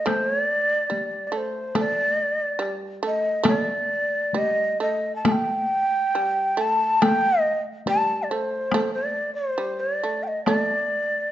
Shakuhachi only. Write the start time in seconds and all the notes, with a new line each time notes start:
0.06 C5
0.28 C#5
0.42 D5
1.27 D5
1.37 C5
1.80 D5
3.07 D#5
3.48 D5
4.38 D#5
4.82 D#5
5.16 A5
5.28 G5 A5
6.61 A5
7.02 G5
7.41 D#5
7.89 A5
8.23 D5
8.30 C5
8.94 D5
9.35 C5
9.80 D5
10.23 G5
10.27 D#5
10.45 D5